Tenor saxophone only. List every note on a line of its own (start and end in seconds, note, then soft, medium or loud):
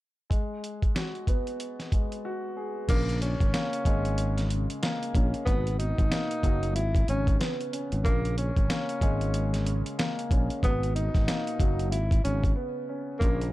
2.89 3.18 A#3 loud
3.22 4.79 C#4 medium
5.45 5.75 B3 loud
5.79 6.72 D#4 medium
6.75 7.05 E4 medium
7.09 7.38 C#4 medium
8.04 8.34 A#3 loud
8.38 9.95 C#4 medium
10.64 10.93 B3 loud
10.96 11.88 D#4 medium
11.91 12.20 E4 medium
12.24 12.53 C#4 medium
13.19 13.49 A#3 loud